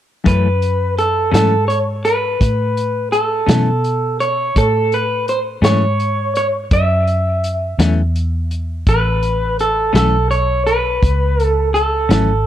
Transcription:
0.24 clean electric guitar F#2 E3 A3 C#4 B4, fingered electric bass F#2, kick, closed hi-hat
0.62 closed hi-hat
0.98 clean electric guitar A4, closed hi-hat
1.31 clean electric guitar F#2 E3 A3 C#4 A4, fingered electric bass G#2, snare, closed hi-hat
1.68 clean electric guitar C#5, closed hi-hat
2.05 clean electric guitar B4, closed hi-hat
2.41 fingered electric bass A2, kick, closed hi-hat
2.77 closed hi-hat
3.12 clean electric guitar A4, closed hi-hat
3.47 clean electric guitar F#2 E3 A3 C#4, fingered electric bass B2, snare, closed hi-hat
3.84 closed hi-hat
4.20 clean electric guitar C#5, closed hi-hat
4.56 fingered electric bass A2, clean electric guitar A4, kick, closed hi-hat
4.92 clean electric guitar B4, closed hi-hat
5.28 clean electric guitar C5, closed hi-hat
5.62 clean electric guitar F#2 E3 A3 C#4 C#5, fingered electric bass G#2, snare, closed hi-hat
6.00 closed hi-hat
6.35 clean electric guitar C#5, closed hi-hat
6.71 fingered electric bass F#2, clean electric guitar E5, kick, closed hi-hat
7.07 closed hi-hat
7.44 closed hi-hat
7.79 fingered electric bass E2, clean electric guitar F#2 E3 A3 C#4, snare, closed hi-hat
8.15 closed hi-hat
8.51 closed hi-hat
8.87 fingered electric bass A1, clean electric guitar B4, kick, closed hi-hat
9.23 closed hi-hat
9.59 clean electric guitar A4, closed hi-hat
9.93 fingered electric bass B1, clean electric guitar F#2 E3 A3 C#4 A4, snare, closed hi-hat
10.31 clean electric guitar C#5, closed hi-hat
10.66 clean electric guitar B4, closed hi-hat
11.03 fingered electric bass C#2, kick, closed hi-hat
11.40 clean electric guitar A4, closed hi-hat
11.74 clean electric guitar A4, closed hi-hat
12.09 fingered electric bass G#1, clean electric guitar F#2 E3 A3 C#4, snare, closed hi-hat

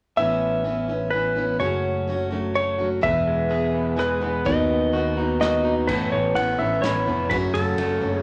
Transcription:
0.17 fingered electric bass A1, steel-string acoustic guitar A2 E3 B3 C#4 E4, electric slide guitar E5
0.64 steel-string acoustic guitar E3 B3 C#4 E4
0.88 steel-string acoustic guitar B3 C#4 E4
1.10 steel-string acoustic guitar E3 B3 C#4, electric slide guitar B4
1.15 steel-string acoustic guitar E4
1.35 steel-string acoustic guitar B3 C#4 E4
1.60 fingered electric bass F#1, steel-string acoustic guitar F#2 C#3 F#3 A3 C#4 F#4, electric slide guitar C#5
2.08 steel-string acoustic guitar F#3 A3 C#4 F#4
2.31 steel-string acoustic guitar F#3 A3 C#4 F#4
2.55 steel-string acoustic guitar F#3 A3 C#4 F#4, electric slide guitar C#5
2.78 steel-string acoustic guitar F#3 A3 C#4 F#4
3.01 fingered electric bass E1, steel-string acoustic guitar E2 B2 E3 G#3 B3 G#4, electric slide guitar E5, kick
3.28 clean electric guitar G#3
3.49 steel-string acoustic guitar E3 G#3 B3 G#4
3.74 clean electric guitar B3
3.96 steel-string acoustic guitar E3 G#3 B3 G#4, electric slide guitar B4, cross-stick
4.21 steel-string acoustic guitar E3 G#3 B3 G#4
4.45 fingered electric bass D#2, steel-string acoustic guitar D#3 B3 D#4 F#4, electric slide guitar D#5, kick
4.70 clean electric guitar B3
4.92 steel-string acoustic guitar D#3 B3 D#4 F#4
5.17 steel-string acoustic guitar B3 D#4 F#4
5.40 steel-string acoustic guitar D#3 B3 D#4 F#4, electric slide guitar D#5, snare
5.63 steel-string acoustic guitar B3 D#4 F#4
5.87 fingered electric bass A1, steel-string acoustic guitar A2 E3 B3 C#4 E4, electric slide guitar B4, kick, crash
6.12 fingered electric bass A1, clean electric guitar E3, electric slide guitar C#5
6.35 fingered electric bass A1, steel-string acoustic guitar E3 B3 C#4 E4, electric slide guitar F#5, ride
6.58 fingered electric bass A1, steel-string acoustic guitar B3 C#4 E4, electric slide guitar E5
6.82 fingered electric bass A1, steel-string acoustic guitar E3 B3 C#4 E4, electric slide guitar C#5, snare, ride
7.06 fingered electric bass F1, steel-string acoustic guitar B3 C#4 E4
7.30 fingered electric bass F#1, steel-string acoustic guitar F#2 C#3 F#3 A3 C#4 F#4, electric slide guitar B4, kick, ride
7.54 fingered electric bass F#1, clean electric guitar C#3, electric slide guitar A4, ride
7.78 fingered electric bass F#1, steel-string acoustic guitar F#3 A3 C#4 F#4, ride
8.01 fingered electric bass F#1, steel-string acoustic guitar F#3 A3 C#4 F#4
8.16 electric slide guitar G#4

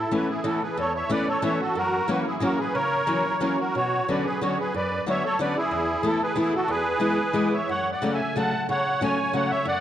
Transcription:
Already playing: accordion A4
0.11 steel-string acoustic guitar E3 A3 B3 C#4, accordion E4 B4
0.28 accordion E4 G#4
0.44 steel-string acoustic guitar E3 A3 B3 C#4, accordion E4 A4
0.62 accordion G#4 B4
0.77 steel-string acoustic guitar E2, accordion A4 C#5
0.94 accordion C#5 E5
1.09 steel-string acoustic guitar E3 A3 B3 C#4, accordion B4 D5
1.28 accordion A4 C#5
1.42 steel-string acoustic guitar E3 A3 B3 C#4, accordion C#5 E5
1.60 accordion F#4 A4
1.75 steel-string acoustic guitar F#2, accordion F#4 A#4
2.08 steel-string acoustic guitar E3 F#3 A#3 C#4, accordion F#4 B4
2.22 accordion A#4
2.26 accordion E4 G#4
2.40 steel-string acoustic guitar E3 F#3 A#3 C#4, accordion F#4 A#4
2.59 accordion G#4 B4
2.74 steel-string acoustic guitar C#3, accordion A#4 C#5
3.07 steel-string acoustic guitar E3 F#3 A#3 C#4
3.41 steel-string acoustic guitar E3 F#3 A#3 C#4, accordion A#4 C#5
3.59 accordion F#4 A#4
3.75 steel-string acoustic guitar B2, accordion F#4 C#5
4.08 steel-string acoustic guitar D3 F#3 B3 C#4, accordion B4 D5
4.25 accordion G#4 B4
4.41 steel-string acoustic guitar D3 F#3 B3 C#4, accordion F#4 C#5
4.59 accordion G#4 B4
4.74 steel-string acoustic guitar F#2, accordion B4 D5
5.06 steel-string acoustic guitar D3 F#3 B3 C#4, accordion C#5 E5
5.25 accordion A4 C#5
5.39 steel-string acoustic guitar D3 F#3 B3 C#4, accordion B4 D5
5.57 accordion E4 G#4
5.71 steel-string acoustic guitar E2
6.03 steel-string acoustic guitar E3 A3 B3 E4, accordion E4 A4
6.23 accordion G#4 B4
6.36 steel-string acoustic guitar E3 A3 B3 E4, accordion E4 G#4
6.55 accordion F#4 A4
6.68 steel-string acoustic guitar E2, accordion G#4 B4
7.00 steel-string acoustic guitar E3 G#3 B3 E4
7.33 steel-string acoustic guitar E3 G#3 B3 E4
7.54 accordion C#5 E5
7.69 steel-string acoustic guitar F#2, accordion C#5 F#5
7.92 accordion D5 F#5
8.02 steel-string acoustic guitar C#3 F#3 A3 C#4
8.13 accordion E5 G#5
8.36 steel-string acoustic guitar C#3 F#3 A3 C#4, accordion F#5 A5
8.69 steel-string acoustic guitar C#3, accordion C#5 F#5
9.01 steel-string acoustic guitar C#3 F#3 A3 C#4, accordion C#5 G#5
9.33 steel-string acoustic guitar C#3 F#3 A3 C#4, accordion C#5 F#5
9.50 accordion C#5 E5
9.65 steel-string acoustic guitar F#2, accordion D5 F#5

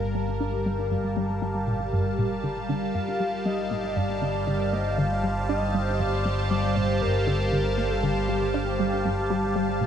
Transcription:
Already playing: analog synth bass G1, analog synth pad G3 G4 A#4 F5 A5
0.15 synth arpeggio sound G3
0.40 synth arpeggio sound D4
0.66 synth arpeggio sound G3
0.91 synth arpeggio sound G2
1.17 synth arpeggio sound G3
1.42 synth arpeggio sound G3
1.68 synth arpeggio sound A#2
1.93 synth arpeggio sound G2
2.18 synth arpeggio sound A#2
2.44 synth arpeggio sound D3
2.69 synth arpeggio sound D3
2.95 analog synth bass G1, synth arpeggio sound G2, analog synth lead F5
3.20 synth arpeggio sound G3
3.46 synth arpeggio sound G3, analog synth lead D#5
3.71 synth arpeggio sound A#2
3.96 synth arpeggio sound G2, analog synth lead D5
4.22 synth arpeggio sound D3
4.47 synth arpeggio sound D3, analog synth lead D5
4.56 analog synth pad C5
4.73 synth arpeggio sound A#3, analog synth lead D#5
4.98 synth arpeggio sound D3, analog synth lead F5
5.24 synth arpeggio sound G3
5.49 synth arpeggio sound D4, analog synth lead D#5
5.74 synth arpeggio sound G3
6.00 synth arpeggio sound G2, analog synth lead D5
6.25 synth arpeggio sound G3
6.51 synth arpeggio sound G3, analog synth lead D5
6.76 synth arpeggio sound A#2, analog synth lead C5
7.01 synth arpeggio sound G2, analog synth lead A#4
7.27 synth arpeggio sound D3, analog synth lead A4
7.39 analog synth lead A#4
7.52 synth arpeggio sound D3
7.78 synth arpeggio sound A#3
7.90 analog synth lead A4
8.03 synth arpeggio sound D3, analog synth lead G4
8.29 synth arpeggio sound G3
8.54 synth arpeggio sound D4
8.80 synth arpeggio sound G3
9.05 synth arpeggio sound G2
9.30 synth arpeggio sound G3
9.56 synth arpeggio sound G3
9.81 synth arpeggio sound A#2

